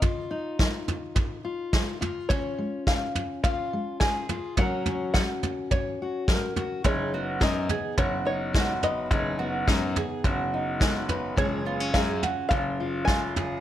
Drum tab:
SD |--o---o-|--o---o-|--o---o-|--o---o-|
FT |o--oo--o|o--oo--o|oo-oo--o|o--oo--o|
BD |o-o-o-o-|o-o-o-o-|o-o-o-o-|o-o-o-o-|

SD |--o---o-|--o---o-|
FT |o--oo--o|o--oo--o|
BD |o-o-o-o-|o-o-o-o-|